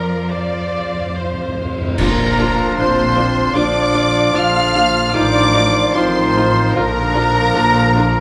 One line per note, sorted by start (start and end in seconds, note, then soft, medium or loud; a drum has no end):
0.00 1.74 F2 medium
0.00 1.53 F3 medium
0.00 0.26 A#4 medium
0.00 0.27 D5 soft
0.00 0.27 A#5 soft
0.29 0.36 F2 soft
0.29 1.76 C5 soft
0.29 1.14 D5 medium
0.29 1.78 F5 soft
0.37 0.44 F2 soft
0.53 0.60 F2 soft
0.62 0.69 F2 soft
0.70 0.77 F2 soft
0.78 0.84 F2 soft
0.85 0.92 F2 soft
0.94 0.99 F2 soft
1.01 1.07 F2 soft
1.08 1.15 F2 medium
1.14 1.23 F2 soft
1.14 1.98 C5 soft
1.25 1.32 F2 medium
1.33 1.39 F2 medium
1.40 1.47 F2 medium
1.48 1.55 F2 medium
1.57 1.64 F2 medium
1.65 1.72 F2 medium
1.73 1.80 F2 medium
1.81 1.87 F2 medium
1.88 1.95 F2 medium
1.98 2.68 A#1 medium
1.98 3.12 A#2 medium
1.98 2.69 A#2 medium
1.98 3.51 D3 medium
1.98 3.50 F3 medium
1.98 3.51 F3 medium
1.98 2.74 A#3 medium
1.98 2.07 D4 medium
1.98 3.51 D4 medium
1.98 3.51 F4 medium
1.98 2.07 F4 medium
1.98 2.74 A#4 medium
1.98 2.74 A#5 medium
1.98 concert bass drum medium
1.98 crash medium
2.39 2.47 D4 medium
2.39 2.47 F4 medium
2.77 3.45 A#1 medium
2.77 3.46 A#2 medium
2.77 3.55 C4 medium
2.77 2.86 D4 medium
2.77 2.87 F4 medium
2.77 3.54 C5 medium
2.77 3.55 C5 medium
2.77 3.55 C6 medium
3.15 3.23 D4 medium
3.15 3.24 F4 medium
3.53 4.25 A#1 medium
3.53 4.25 A#2 medium
3.53 4.33 D3 medium
3.53 4.32 F3 medium
3.53 4.33 F3 medium
3.53 4.34 D4 medium
3.53 3.63 D4 medium
3.53 4.33 D4 medium
3.53 3.62 F4 medium
3.53 4.33 F4 medium
3.53 4.35 D5 medium
3.53 4.33 D5 medium
3.53 4.35 D6 medium
3.93 4.01 D4 medium
3.93 4.01 F4 medium
4.33 5.04 A#1 medium
4.33 5.05 A#2 medium
4.33 5.13 D3 medium
4.33 5.12 F3 medium
4.33 4.42 D4 medium
4.33 5.12 D4 medium
4.33 4.42 F4 medium
4.33 5.13 F4 medium
4.33 5.15 F4 medium
4.33 5.14 F5 medium
4.33 5.15 F5 medium
4.33 5.14 F6 medium
4.74 4.82 D4 medium
4.74 4.83 F4 medium
5.13 5.86 A1 medium
5.13 5.86 A2 medium
5.13 5.92 D#3 medium
5.13 5.93 F3 medium
5.13 5.94 D4 medium
5.13 5.21 D#4 medium
5.13 5.93 D#4 medium
5.13 5.21 F4 medium
5.13 5.93 F4 medium
5.13 5.93 D5 medium
5.13 5.94 D6 loud
5.54 5.62 D#4 medium
5.54 5.62 F4 medium
5.94 6.67 A1 medium
5.94 6.66 A2 medium
5.94 6.73 D#3 medium
5.94 6.73 F3 medium
5.94 6.74 F3 medium
5.94 6.76 C4 medium
5.94 6.02 D#4 medium
5.94 6.77 D#4 medium
5.94 6.02 F4 medium
5.94 6.74 F4 medium
5.94 6.76 C5 medium
5.94 6.75 C6 medium
6.36 6.44 D#4 medium
6.36 6.44 F4 medium
6.73 7.45 A#1 medium
6.73 7.93 A#2 medium
6.73 7.46 A#2 medium
6.73 8.20 D3 medium
6.73 8.20 F3 medium
6.73 8.20 A#3 medium
6.73 8.20 D4 medium
6.73 6.84 D4 medium
6.73 6.84 F4 medium
6.73 8.12 A#4 medium
6.73 8.20 A#4 medium
6.73 8.20 A#5 loud
7.14 7.22 D4 medium
7.14 7.22 F4 medium
7.54 8.20 A#1 medium
7.54 8.20 A#2 medium
7.54 7.62 D4 medium
7.54 7.63 F4 medium
7.97 8.05 D4 medium
7.97 8.05 F4 medium